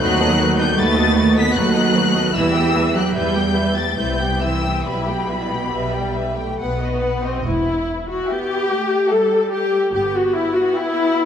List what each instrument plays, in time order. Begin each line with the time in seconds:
0.00 double bass section D#2, cello section F#3, viola section A3 D#4, violin section F#4 B4 F#6
0.19 viola section B3 F#4, violin section A4 D#5
0.37 viola section A3 D#4, violin section F#4 B4
0.57 cello section G3, viola section B3 F#4, violin section A4 D#5 G6
0.76 double bass section D#2, viola section A3 D#4, cello section A3, violin section F#4 B4 A6
0.94 viola section B3 F#4, violin section A4 D#5
1.14 viola section A3, violin section F#4 B4
1.18 viola section D#4
1.34 cello section B3, viola section B3 F#4, violin section A4 D#5
1.38 violin section B6
1.54 double bass section D#2, cello section F#3, viola section A3 D#4, violin section F#4 B4 F#6
1.73 viola section B3 F#4, violin section A4 D#5
1.94 viola section A3 D#4, violin section F#4 B4
2.14 viola section B3 F#4, violin section A4 D#5
2.33 double bass section E2, cello section E3, viola section G3 E4, violin section B4 E5 E6
2.53 viola section B3 G4, violin section G4 G5
2.75 viola section G3 E4, violin section B4 E5
2.96 cello section F#3, viola section B3 G4, violin section G4 G5 F#6
3.15 double bass section E2, viola section G3 E4, cello section G3, violin section B4 E5 G6
3.34 viola section B3 G4, violin section G4 G5
3.55 viola section G3 E4, violin section B4 E5
3.76 cello section A3, viola section B3 G4, violin section G4 G5 A6
3.97 double bass section C2, cello section G3, viola section C4 E4, violin section B4 E5 G6
4.20 viola section B3 C4, violin section G4 G5
4.41 cello section E3, viola section C4 E4, violin section B4 E5 E6
4.62 viola section B3 C4, violin section G4 G5
4.85 double bass section B1, cello section B2, viola section G3 E4, violin section B4 E5 B5
5.07 viola section B3 G4, violin section G4 G5
5.27 viola section G3 E4, violin section B4 E5
5.52 viola section B3 G4, violin section G4 G5
5.72 double bass section B1, viola section G3, violin section B4 E5
5.93 violin section G4 G5
6.14 violin section B4 E5
6.35 violin section G4 G5
6.40 viola section A3
6.59 double bass section B1, viola section B3, violin section B4 F#5
6.79 violin section F#4 D#5
7.01 violin section B4 F#5
7.23 viola section C4, violin section F#4 D#5
7.45 double bass section E1, viola section E4
8.10 viola section F#4
8.26 cello section B3, viola section G4, violin section E5 G5
8.70 cello section A3
9.09 cello section G3, viola section A4, violin section E5 G5
9.53 viola section G4
9.94 double bass section G1, cello section B3, viola section G4
10.16 viola section F#4
10.35 viola section E4
10.54 viola section F#4
10.75 viola section E4, violin section E5 G5 B5